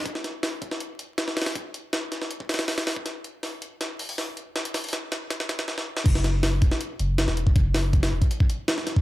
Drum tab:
CC |--------------------------------|--------------------------------|--------------------------------|--------------------------------|
HH |x---x---o---x---x---x---x---ooo-|x---x---x---x---x---ooo-o-o-o---|x---x---o---x---x---o-o-o---x---|x-x-o-oox---x---x---x-----------|
SD |--o-o---o-----o---------o-o-ooo-|--------o---o-o-----ooo-o-o-o---|o-------o-------o-------o-------|o---o---o---o---o-o-o-o-o-o---o-|
BD |o-----------o-------------------|o-----------------o-----------o-|--------------------------------|--------------------------------|

CC |x-------------------------------|--------------------------------|
HH |x---x---o---x---x---x---x---x---|x---o---x-o---x-x---x---x---x---|
SD |--o-o---o-----o---------o-o-----|----o-----o-------------o-o-o---|
BD |o-----------o-----------------o-|o-------o-----o---o-----------o-|